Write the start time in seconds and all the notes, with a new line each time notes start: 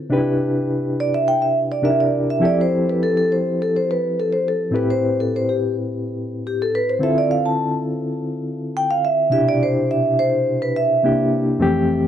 0.10 C3 D4 D#4 G4 B4
0.18 E4
1.00 D5
1.14 E5
1.28 G5
1.42 E5
1.72 D5
1.82 C3 D4 D#4 G4 A#4 E5
1.90 E4
2.00 D5
2.30 E5
2.40 F3 C4 E4 G4 A4
2.45 D5
2.61 C5
2.89 B4
3.03 A4
3.17 A4
3.32 C5
3.62 A4
3.76 C5
3.91 B4
4.20 A4
4.32 C5
4.48 A4
4.71 A2 C4 E4 G4 B4
4.76 B4
4.90 C5
5.20 A4
5.36 C5
5.49 G4
6.47 G4
6.62 A4
6.75 B4
6.89 C5
6.99 D3 C4 E4 F4 E5
7.03 A4
7.18 D5
7.31 F5
7.46 A5
8.77 G5
8.91 F5
9.05 E5
9.30 B2 C3 D4 E4 G4 E5
9.49 D5
9.63 C5
9.91 E5
10.19 C5
10.62 B4
10.76 E5
11.03 C3 A#3 D4 E4 G4
11.59 F2 E3 A3 C4 G4